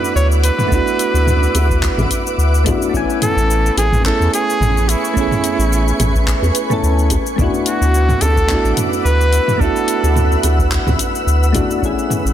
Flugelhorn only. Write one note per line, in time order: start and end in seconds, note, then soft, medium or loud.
0.00 0.12 B4 loud
0.16 0.28 C#5 loud
0.44 2.62 B4 loud
3.23 3.74 A4 loud
3.78 4.04 G#4 loud
4.06 4.31 A4 loud
4.34 4.90 G#4 loud
4.89 6.55 E4 medium
7.67 8.23 F#4 loud
8.22 8.77 A4 loud
9.04 9.62 B4 loud
9.60 10.44 A4 loud